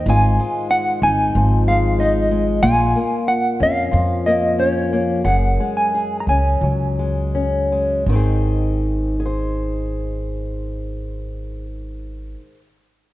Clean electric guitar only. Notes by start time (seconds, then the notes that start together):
0.10 G#5
0.71 F#5
1.03 G#5
1.68 F5
2.00 D#5
2.63 G#5
3.28 F#5
3.63 F5
4.26 D#5
4.60 C#5
5.25 F#5
5.77 G#5
6.20 A#5
6.29 G#5